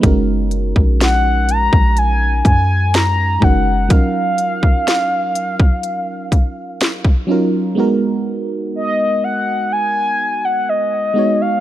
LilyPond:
<<
  \new Staff \with { instrumentName = "Soft synth lead" } { \time 4/4 \key fis \major \tempo 4 = 62 r4 fis''8 ais''8 gis''8 gis''8 ais''8 fis''8 | eis''2.~ eis''8 r8 | r4 dis''8 fis''8 gis''8. fis''16 dis''8. eis''16 | }
  \new Staff \with { instrumentName = "FM electric piano" } { \time 4/4 \key fis \major <gis cis' dis' fis' ais'>4. r2 <gis cis' dis' fis' ais'>8 | <fis cis' dis' eis' ais'>4. r2 <fis cis' dis' eis' ais'>8 | <gis b dis' fis' ais'>4. r2 <gis b dis' fis' cis''>8 | }
  \new Staff \with { instrumentName = "808-style bass" } { \clef bass \time 4/4 \key fis \major fis,,8. ais,,4 ais,,8. fis,4 fis,,8 | r1 | r1 | }
  \new DrumStaff \with { instrumentName = "Drums" } \drummode { \time 4/4 <hh bd>8 hh16 bd16 <hh sn>8 hh16 bd16 hh8 <hh bd>8 <hh sn>8 bd8 | <hh bd>8 hh16 bd16 <hh sn>8 hh16 bd16 hh8 <hh bd>8 <hh sn>16 bd8. | r4 r4 r4 r4 | }
>>